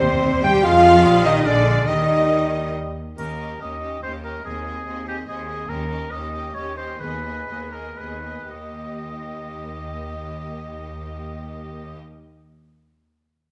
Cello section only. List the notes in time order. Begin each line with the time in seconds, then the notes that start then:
Already playing: C3
0.44 G3
0.64 F3
1.26 D#3
1.45 D3
1.88 D#3
3.17 D#2
3.60 D#2
4.03 D#2
4.46 D#2
4.87 D#2
5.28 D#2
5.70 D#2
6.12 D#2
6.56 D#2
7.01 D#2
7.48 D#2
7.98 D#2
8.51 D#2